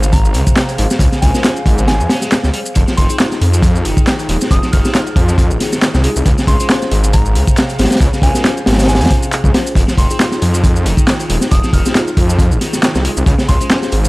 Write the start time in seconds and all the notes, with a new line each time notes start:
Already playing: G#1 G#4 C5 F5
0.03 C#3, shaker
0.13 A#5, kick, closed hi-hat, shaker
0.25 shaker
0.34 C#2 C3, closed hi-hat, open hi-hat
0.47 kick, shaker
0.56 snare, clap, closed hi-hat, shaker
0.69 closed hi-hat, shaker
0.78 G#1 F3, closed hi-hat, open hi-hat
0.90 snare, shaker
0.99 C#2 C#3, kick, closed hi-hat, shaker
1.12 C#3, snare, shaker
1.22 C#2 C3 G#5, kick, closed hi-hat, open hi-hat
1.34 G#3 C#4 F4 A#4, snare, shaker
1.44 C#4 F4 C5, snare, clap, closed hi-hat, shaker
1.56 shaker
1.66 G#1, kick, closed hi-hat, open hi-hat
1.78 C#3, shaker
1.88 G#5, snare, closed hi-hat, shaker
1.99 F2 G#5, shaker
2.09 C#4, snare, closed hi-hat, open hi-hat
2.22 G#3, snare, shaker
2.31 snare, clap, closed hi-hat, shaker
2.43 C#2, snare, shaker
2.54 G3, closed hi-hat, open hi-hat
2.66 shaker
2.75 F1 F3 D#4 F4, kick, closed hi-hat, shaker
2.88 F3, snare, shaker
2.97 F1 D#3 C6, kick, closed hi-hat, open hi-hat
3.09 C4 D#4 F4 G#4, closed hi-hat, shaker
3.19 D#4 F4 G#4, snare, clap, closed hi-hat, shaker
3.32 snare, shaker
3.41 F2, closed hi-hat, open hi-hat
3.53 F3, shaker
3.62 kick, closed hi-hat, shaker
3.75 shaker
3.85 F1 D#3, closed hi-hat, open hi-hat
3.97 kick, shaker
4.07 snare, clap, closed hi-hat, shaker
4.19 closed hi-hat, shaker
4.29 D#1 G#3, closed hi-hat, open hi-hat
4.41 snare, shaker
4.51 F1 F3 D#6, kick, closed hi-hat, shaker
4.63 F3, snare, shaker
4.72 F1 D#3 F6, kick, closed hi-hat, open hi-hat
4.85 C4 D#4 F4 G4, snare, shaker
4.95 D#4 F4 G#4, snare, clap, closed hi-hat, shaker
5.07 shaker
5.16 F2, kick, closed hi-hat, open hi-hat
5.29 F3, shaker
5.38 kick, closed hi-hat, shaker
5.51 G#1, shaker
5.60 D#3 D#4 F4 G#4, snare, closed hi-hat, open hi-hat
5.73 snare, shaker
5.82 snare, clap, closed hi-hat, shaker
5.94 C2, snare, shaker
6.04 G#3 D#4 F4 G#4, closed hi-hat, open hi-hat
6.16 C2, shaker
6.26 C#2 C#3 C5 F5, kick, closed hi-hat, shaker
6.38 C#3, snare, shaker
6.47 C#2 C3 C6, kick, closed hi-hat, open hi-hat
6.60 G#3 C#4 F4 C5, closed hi-hat, shaker
6.70 C#4 F4 C5, snare, clap, closed hi-hat, shaker
6.82 snare, shaker
6.91 G#1, closed hi-hat, open hi-hat
7.04 C#3, shaker
7.13 A#5, kick, closed hi-hat, shaker
7.26 shaker
7.35 C#2 C3, closed hi-hat, open hi-hat
7.47 kick, shaker
7.57 snare, clap, closed hi-hat, shaker
7.69 closed hi-hat, shaker
7.79 G#1 F3, snare, closed hi-hat, open hi-hat
7.85 snare, closed hi-hat
7.91 snare, closed hi-hat, shaker
7.96 snare, closed hi-hat
8.01 C#2 C#3, kick, closed hi-hat, shaker
8.13 C#3, snare, shaker
8.22 C#2 C3 G#5, kick, closed hi-hat, open hi-hat
8.35 G#3 C#4 F4 A#4, snare, shaker
8.45 C#4 F4 C5, snare, clap, closed hi-hat, shaker
8.57 shaker
8.66 G#1, snare, closed hi-hat, open hi-hat
8.73 snare, closed hi-hat
8.78 C#3, snare, closed hi-hat, shaker
8.84 snare, closed hi-hat
8.88 G#5, snare, closed hi-hat, shaker
8.95 snare, closed hi-hat
9.01 F2 G#5, closed hi-hat, shaker
9.05 snare, closed hi-hat
9.11 C3 C#4 F4 C5, kick, closed hi-hat, open hi-hat
9.23 shaker
9.32 clap, closed hi-hat, shaker
9.44 C#2, kick, shaker
9.54 F3 C#4 F4 C5, snare, closed hi-hat, open hi-hat
9.66 closed hi-hat, shaker
9.75 F1 F3 D#4 F4 G#4, kick, closed hi-hat, shaker
9.88 F3, snare, shaker
9.98 F1 D#3 C6, kick, closed hi-hat, open hi-hat
10.10 C4 D#4 F4 G#4, closed hi-hat, shaker
10.20 D#4 F4 G#4, snare, clap, closed hi-hat, shaker
10.32 snare, shaker
10.42 F2, closed hi-hat, open hi-hat
10.54 F3, shaker
10.64 kick, closed hi-hat, shaker
10.76 shaker
10.86 F1 D#3, closed hi-hat, open hi-hat
10.97 kick, shaker
11.07 snare, clap, closed hi-hat, shaker
11.20 closed hi-hat, shaker
11.30 D#1 G#3, closed hi-hat, open hi-hat
11.41 snare, shaker
11.51 F1 F3 D#6, kick, closed hi-hat, shaker
11.64 F3, snare, shaker
11.73 F1 D#3 F6, kick, closed hi-hat, open hi-hat
11.86 C4 D#4 F4 G4, snare, shaker
11.95 D#4 F4 G#4, snare, clap, closed hi-hat, shaker
12.08 shaker
12.17 F2, kick, closed hi-hat, open hi-hat
12.29 F3, shaker
12.39 kick, closed hi-hat, shaker
12.51 G#1, shaker
12.61 D#3 D#4 F4 G#4, snare, closed hi-hat, open hi-hat
12.73 snare, shaker
12.83 snare, clap, closed hi-hat, shaker
12.95 C2, snare, shaker
13.05 G#3 D#4 F4 G#4, closed hi-hat, open hi-hat
13.17 C2, shaker
13.26 C#2 C#3 C5 F5, kick, closed hi-hat, shaker
13.38 C#3, snare, shaker
13.48 C#2 C3 C6, kick, closed hi-hat, open hi-hat
13.60 G#3 C#4 F4 C5, closed hi-hat, shaker
13.70 C#4 F4 C5, snare, clap, closed hi-hat, shaker
13.82 snare, shaker
13.92 G#1, closed hi-hat, open hi-hat
14.05 C#3, shaker